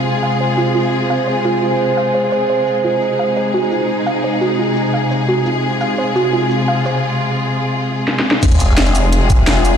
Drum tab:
CC |------------------------------------------------|------------------------------------------------|------------------------------------------------|------------------------------------------------|
HH |------------------------------------------------|------------------------------------------------|------------------------------------------------|------------------------------------------------|
SH |---x--x-----------x-----------x-----------x-----|---x--x-----------x-----------x-----------x-----|---x--x-----------x-----------x-----------x-----|---x--x-----------x-----------x-----------x-----|
SD |------------------------------------------------|------------------------------------------------|------------------------------------------------|------------------------------------------------|
BD |------------------------------------------------|------------------------------------------------|------------------------------------------------|------------------------------------------------|

CC |------------------------------------------------|------------------------------------------------|x-----------------------------------------------|
HH |------------------------------------------------|------------------------------------------------|x--x--x-----x--x--x-----x-----x-----x-----x-----|
SH |---x--x-----------x-----------x-----------x-----|------------------------------------------------|---x--x-----------x-----------x-----------x-----|
SD |------------------------------------------------|------------------------------------o---o---o---|------------o--------------------r--o-----------|
BD |------------------------------------------------|------------------------------------------------|o-----------------------------o-----------------|